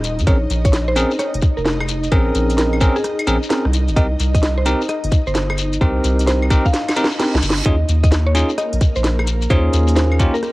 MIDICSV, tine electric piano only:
0, 0, Header, 1, 2, 480
1, 0, Start_track
1, 0, Tempo, 461538
1, 282, Time_signature, 4, 2, 24, 8
1, 10942, End_track
2, 0, Start_track
2, 0, Title_t, "Tine electric piano"
2, 0, Program_c, 0, 4
2, 283, Note_on_c, 0, 60, 87
2, 283, Note_on_c, 0, 61, 83
2, 283, Note_on_c, 0, 68, 83
2, 283, Note_on_c, 0, 70, 101
2, 380, Note_off_c, 0, 60, 0
2, 380, Note_off_c, 0, 61, 0
2, 380, Note_off_c, 0, 68, 0
2, 380, Note_off_c, 0, 70, 0
2, 1002, Note_on_c, 0, 60, 92
2, 1002, Note_on_c, 0, 61, 86
2, 1002, Note_on_c, 0, 68, 90
2, 1003, Note_on_c, 0, 70, 102
2, 1158, Note_off_c, 0, 60, 0
2, 1158, Note_off_c, 0, 61, 0
2, 1158, Note_off_c, 0, 68, 0
2, 1158, Note_off_c, 0, 70, 0
2, 2204, Note_on_c, 0, 60, 100
2, 2204, Note_on_c, 0, 61, 90
2, 2204, Note_on_c, 0, 68, 90
2, 2204, Note_on_c, 0, 70, 108
2, 2903, Note_off_c, 0, 60, 0
2, 2903, Note_off_c, 0, 61, 0
2, 2903, Note_off_c, 0, 68, 0
2, 2903, Note_off_c, 0, 70, 0
2, 2922, Note_on_c, 0, 60, 96
2, 2923, Note_on_c, 0, 61, 87
2, 2923, Note_on_c, 0, 68, 89
2, 2923, Note_on_c, 0, 70, 105
2, 3078, Note_off_c, 0, 60, 0
2, 3078, Note_off_c, 0, 61, 0
2, 3078, Note_off_c, 0, 68, 0
2, 3078, Note_off_c, 0, 70, 0
2, 3402, Note_on_c, 0, 61, 88
2, 3403, Note_on_c, 0, 60, 98
2, 3403, Note_on_c, 0, 68, 88
2, 3403, Note_on_c, 0, 70, 109
2, 3500, Note_off_c, 0, 60, 0
2, 3500, Note_off_c, 0, 61, 0
2, 3500, Note_off_c, 0, 68, 0
2, 3500, Note_off_c, 0, 70, 0
2, 3642, Note_on_c, 0, 68, 69
2, 3643, Note_on_c, 0, 60, 72
2, 3643, Note_on_c, 0, 61, 68
2, 3643, Note_on_c, 0, 70, 82
2, 3798, Note_off_c, 0, 60, 0
2, 3798, Note_off_c, 0, 61, 0
2, 3798, Note_off_c, 0, 68, 0
2, 3798, Note_off_c, 0, 70, 0
2, 4122, Note_on_c, 0, 60, 87
2, 4122, Note_on_c, 0, 63, 85
2, 4122, Note_on_c, 0, 67, 84
2, 4122, Note_on_c, 0, 70, 101
2, 4219, Note_off_c, 0, 60, 0
2, 4219, Note_off_c, 0, 63, 0
2, 4219, Note_off_c, 0, 67, 0
2, 4219, Note_off_c, 0, 70, 0
2, 4843, Note_on_c, 0, 60, 96
2, 4843, Note_on_c, 0, 63, 88
2, 4843, Note_on_c, 0, 67, 88
2, 4843, Note_on_c, 0, 70, 106
2, 4998, Note_off_c, 0, 60, 0
2, 4998, Note_off_c, 0, 63, 0
2, 4998, Note_off_c, 0, 67, 0
2, 4998, Note_off_c, 0, 70, 0
2, 6041, Note_on_c, 0, 60, 99
2, 6041, Note_on_c, 0, 63, 88
2, 6041, Note_on_c, 0, 70, 107
2, 6042, Note_on_c, 0, 67, 90
2, 6741, Note_off_c, 0, 60, 0
2, 6741, Note_off_c, 0, 63, 0
2, 6741, Note_off_c, 0, 70, 0
2, 6742, Note_off_c, 0, 67, 0
2, 6761, Note_on_c, 0, 60, 100
2, 6762, Note_on_c, 0, 63, 90
2, 6762, Note_on_c, 0, 67, 90
2, 6762, Note_on_c, 0, 70, 107
2, 6917, Note_off_c, 0, 60, 0
2, 6917, Note_off_c, 0, 67, 0
2, 6918, Note_off_c, 0, 63, 0
2, 6918, Note_off_c, 0, 70, 0
2, 7242, Note_on_c, 0, 67, 84
2, 7242, Note_on_c, 0, 70, 106
2, 7243, Note_on_c, 0, 60, 92
2, 7243, Note_on_c, 0, 63, 87
2, 7339, Note_off_c, 0, 70, 0
2, 7340, Note_off_c, 0, 60, 0
2, 7340, Note_off_c, 0, 63, 0
2, 7340, Note_off_c, 0, 67, 0
2, 7481, Note_on_c, 0, 60, 73
2, 7482, Note_on_c, 0, 63, 65
2, 7482, Note_on_c, 0, 67, 69
2, 7482, Note_on_c, 0, 70, 83
2, 7637, Note_off_c, 0, 60, 0
2, 7637, Note_off_c, 0, 70, 0
2, 7638, Note_off_c, 0, 63, 0
2, 7638, Note_off_c, 0, 67, 0
2, 7963, Note_on_c, 0, 63, 78
2, 7963, Note_on_c, 0, 65, 81
2, 7963, Note_on_c, 0, 68, 96
2, 7964, Note_on_c, 0, 61, 88
2, 8060, Note_off_c, 0, 61, 0
2, 8060, Note_off_c, 0, 63, 0
2, 8060, Note_off_c, 0, 65, 0
2, 8060, Note_off_c, 0, 68, 0
2, 8683, Note_on_c, 0, 61, 94
2, 8683, Note_on_c, 0, 65, 89
2, 8683, Note_on_c, 0, 68, 106
2, 8684, Note_on_c, 0, 63, 91
2, 8838, Note_off_c, 0, 61, 0
2, 8838, Note_off_c, 0, 63, 0
2, 8838, Note_off_c, 0, 65, 0
2, 8838, Note_off_c, 0, 68, 0
2, 9881, Note_on_c, 0, 68, 111
2, 9882, Note_on_c, 0, 61, 102
2, 9882, Note_on_c, 0, 63, 89
2, 9882, Note_on_c, 0, 65, 94
2, 10581, Note_off_c, 0, 68, 0
2, 10582, Note_off_c, 0, 61, 0
2, 10582, Note_off_c, 0, 63, 0
2, 10582, Note_off_c, 0, 65, 0
2, 10602, Note_on_c, 0, 61, 100
2, 10602, Note_on_c, 0, 63, 89
2, 10602, Note_on_c, 0, 65, 90
2, 10602, Note_on_c, 0, 67, 108
2, 10758, Note_off_c, 0, 61, 0
2, 10758, Note_off_c, 0, 63, 0
2, 10758, Note_off_c, 0, 65, 0
2, 10758, Note_off_c, 0, 67, 0
2, 10942, End_track
0, 0, End_of_file